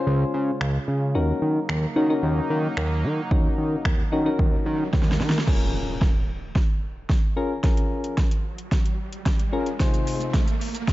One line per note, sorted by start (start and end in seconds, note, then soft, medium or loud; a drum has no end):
0.00 5.43 C#3 medium
0.00 1.11 G#3 medium
0.00 0.56 C#4 medium
0.00 1.11 C#4 medium
0.00 0.56 F4 medium
0.00 1.11 F4 medium
0.00 0.56 G#4 medium
0.00 0.56 C5 medium
0.07 0.24 C#2 loud
0.34 0.51 C#3 medium
0.61 0.78 C#2 loud
0.61 finger snap loud
0.88 1.16 C#3 loud
1.15 1.33 D#2 loud
1.15 5.43 F#3 medium
1.15 5.44 A#3 medium
1.15 1.62 C#4 medium
1.15 1.62 D#4 medium
1.15 5.43 D#4 medium
1.15 1.62 F#4 medium
1.15 1.62 A#4 medium
1.42 1.60 D#3 loud
1.69 1.87 D#2 medium
1.69 finger snap loud
1.96 2.14 D#3 loud
1.96 2.04 C#4 medium
1.96 2.04 D#4 medium
1.96 2.04 F#4 medium
1.96 2.04 A#4 loud
2.10 2.72 C#4 medium
2.10 2.72 D#4 medium
2.10 2.72 F#4 medium
2.10 2.72 A#4 loud
2.23 2.41 D#2 loud
2.50 2.68 D#3 loud
2.77 3.05 D#2 loud
2.77 finger snap loud
3.04 3.22 D#3 loud
3.31 3.49 D#2 loud
3.31 3.78 C#4 medium
3.31 3.78 D#4 medium
3.31 3.78 F#4 medium
3.31 3.78 A#4 medium
3.31 kick loud
3.31 riser medium
3.58 3.76 D#3 medium
3.85 4.03 D#2 loud
3.85 finger snap loud
3.85 kick loud
4.12 4.30 D#3 medium
4.12 4.20 C#4 medium
4.12 4.20 D#4 medium
4.12 4.20 F#4 medium
4.12 4.20 A#4 loud
4.26 4.88 C#4 medium
4.26 4.88 D#4 medium
4.26 4.88 F#4 medium
4.26 4.89 A#4 loud
4.39 4.57 D#2 loud
4.39 kick loud
4.66 4.84 D#3 loud
4.93 5.22 D#2 loud
4.93 kick loud
4.93 snare medium
5.03 snare medium
5.12 snare medium
5.20 5.38 D#3 loud
5.20 snare medium
5.30 snare medium
5.39 snare medium
5.47 6.10 C#4 medium
5.47 6.10 F4 medium
5.47 6.10 G#4 medium
5.47 6.10 A#4 medium
5.47 kick loud
5.47 snare medium
5.47 crash loud
5.47 impact medium
5.47 riser medium
6.01 kick loud
6.01 snare medium
6.56 kick loud
6.56 snare medium
7.10 kick loud
7.10 snare medium
7.36 7.52 C#4 medium
7.36 7.52 F4 medium
7.36 7.52 G#4 medium
7.36 7.52 A#4 loud
7.63 8.26 C#4 medium
7.63 8.26 F4 medium
7.63 8.26 G#4 medium
7.63 8.26 A#4 medium
7.63 kick loud
7.63 snare medium
7.63 closed hi-hat medium
7.77 closed hi-hat soft
8.04 closed hi-hat soft
8.18 kick loud
8.18 snare medium
8.18 closed hi-hat medium
8.31 closed hi-hat medium
8.58 closed hi-hat medium
8.72 kick loud
8.72 snare medium
8.72 closed hi-hat medium
8.86 closed hi-hat soft
9.13 closed hi-hat medium
9.26 kick loud
9.26 snare medium
9.26 closed hi-hat medium
9.39 closed hi-hat medium
9.52 9.68 C#4 medium
9.52 9.68 F4 medium
9.52 9.69 G#4 medium
9.52 9.69 A#4 loud
9.66 closed hi-hat soft
9.80 10.42 C3 medium
9.80 10.42 D#4 medium
9.80 10.42 F4 medium
9.80 10.42 G#4 medium
9.80 10.42 C5 loud
9.80 kick loud
9.80 snare medium
9.80 closed hi-hat medium
9.80 shaker medium
9.94 closed hi-hat soft
9.94 shaker soft
10.07 open hi-hat medium
10.07 shaker medium
10.21 closed hi-hat soft
10.21 shaker medium
10.34 kick loud
10.34 snare medium
10.34 closed hi-hat medium
10.34 shaker medium
10.48 closed hi-hat medium
10.48 shaker medium
10.61 open hi-hat medium
10.61 shaker soft
10.75 closed hi-hat medium
10.75 shaker medium
10.88 kick loud
10.88 snare medium
10.88 closed hi-hat medium
10.88 shaker medium